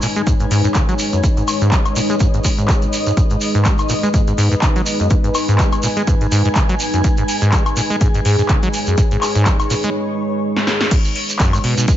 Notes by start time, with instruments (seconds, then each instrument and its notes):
Already playing: analog synth pad G#3 D#4 C#5, ambient pad D#4 B4 G#5
0.02 acid bass A#2, open hi-hat, shekere
0.16 acid bass G#3, closed hi-hat, shekere
0.27 acid bass G#2, kick, closed hi-hat, shekere
0.40 acid bass G#2, closed hi-hat, shekere
0.51 acid bass G#2, open hi-hat, shekere
0.63 acid bass G#2, ambient pad D#5, closed hi-hat, shekere
0.75 acid bass C#3, kick, clap, closed hi-hat, shekere
0.89 acid bass F#3, closed hi-hat, shekere
0.99 open hi-hat, shekere
1.13 acid bass F#2, closed hi-hat, shekere
1.23 acid bass G#2, kick, closed hi-hat, shekere
1.37 acid bass G#2, closed hi-hat, shekere
1.48 open hi-hat, high woodblock, shekere
1.61 acid bass G#2, closed hi-hat, shekere
1.71 acid bass G#3, kick, clap, closed hi-hat, shekere
1.85 closed hi-hat, high woodblock, shekere
1.96 acid bass A#2, open hi-hat, shekere
2.10 acid bass G#3, closed hi-hat, shekere
2.20 acid bass G#2, kick, closed hi-hat, shekere
2.34 acid bass G#2, closed hi-hat, shekere
2.44 acid bass G#3, kick, open hi-hat, shekere
2.58 acid bass G#2, closed hi-hat, shekere
2.68 acid bass G#3, kick, clap, closed hi-hat, shekere
2.82 acid bass G#2, closed hi-hat, shekere
2.93 open hi-hat, shekere
3.06 acid bass G#2, closed hi-hat, shekere
3.17 acid bass G#2, analog synth pad B4, kick, closed hi-hat, shekere
3.30 acid bass G#2, closed hi-hat, shekere
3.41 open hi-hat, shekere
3.55 acid bass G#2, closed hi-hat, shekere
3.65 acid bass G#3, kick, clap, closed hi-hat, shekere
3.78 closed hi-hat, high woodblock, shekere
3.89 acid bass A#2, open hi-hat, shekere
4.03 acid bass G#3, closed hi-hat, shekere
4.14 acid bass G#2, kick, closed hi-hat, shekere
4.27 acid bass G#2, closed hi-hat, shekere
4.38 acid bass G#2, open hi-hat, shekere
4.50 acid bass G#2, ambient pad G#5, closed hi-hat, shekere
4.62 acid bass C#3, kick, clap, closed hi-hat, shekere
4.76 acid bass F#3, closed hi-hat, shekere
4.86 open hi-hat, shekere
5.00 acid bass F#2, closed hi-hat, shekere
5.10 acid bass G#2, kick, closed hi-hat, shekere
5.24 acid bass G#2, closed hi-hat, shekere
5.35 open hi-hat, high woodblock, shekere
5.48 acid bass G#2, closed hi-hat, shekere
5.58 acid bass G#3, kick, clap, closed hi-hat, shekere
5.72 closed hi-hat, high woodblock, shekere
5.83 acid bass A#2, open hi-hat, shekere
5.97 acid bass G#3, closed hi-hat, shekere
6.07 acid bass G#2, kick, closed hi-hat, shekere
6.21 acid bass G#2, closed hi-hat, shekere
6.32 acid bass G#2, open hi-hat, shekere
6.45 acid bass G#2, closed hi-hat, shekere
6.55 acid bass C#3, kick, clap, closed hi-hat, shekere
6.69 acid bass F#3, closed hi-hat, shekere
6.80 open hi-hat, shekere
6.94 acid bass F#2, closed hi-hat, shekere
7.04 acid bass G#2, analog synth pad G#4, kick, closed hi-hat, shekere
7.17 acid bass G#2, closed hi-hat, shekere
7.28 open hi-hat, shekere
7.41 acid bass G#2, closed hi-hat, shekere
7.52 acid bass G#3, kick, clap, closed hi-hat, shekere
7.66 closed hi-hat, high woodblock, shekere
7.77 acid bass A#2, open hi-hat, shekere
7.90 acid bass G#3, closed hi-hat, shekere
8.01 acid bass G#2, kick, closed hi-hat, shekere
8.14 acid bass G#2, closed hi-hat, shekere
8.25 acid bass G#2, open hi-hat, shekere
8.39 acid bass G#2, closed hi-hat, shekere
8.49 acid bass C#3, kick, clap, closed hi-hat, shekere
8.63 acid bass F#3, closed hi-hat, shekere
8.73 open hi-hat, shekere
8.86 acid bass F#2, closed hi-hat, shekere
8.98 kick, closed hi-hat, shekere
9.11 acid bass G#2, closed hi-hat, shekere
9.21 clap, open hi-hat, high woodblock, shekere
9.35 acid bass G#2, closed hi-hat, shekere
9.46 acid bass G#3, kick, clap, closed hi-hat, shekere
9.60 closed hi-hat, high woodblock, shekere
9.70 acid bass A#2, open hi-hat, shekere
9.83 acid bass G#3, closed hi-hat, shekere
10.56 snare
10.67 snare
10.81 snare
10.91 acid bass G#2, analog synth pad G#3 D#4 B4, ambient pad D#4, kick, closed hi-hat, crash, shekere
11.05 closed hi-hat, shekere
11.15 open hi-hat
11.29 closed hi-hat, shekere
11.39 acid bass F#2, kick, clap, closed hi-hat, shekere
11.53 acid bass G#2, closed hi-hat, high woodblock, shekere
11.64 acid bass B2, open hi-hat
11.77 acid bass B2, closed hi-hat, shekere
11.88 acid bass G#3, kick, closed hi-hat, shekere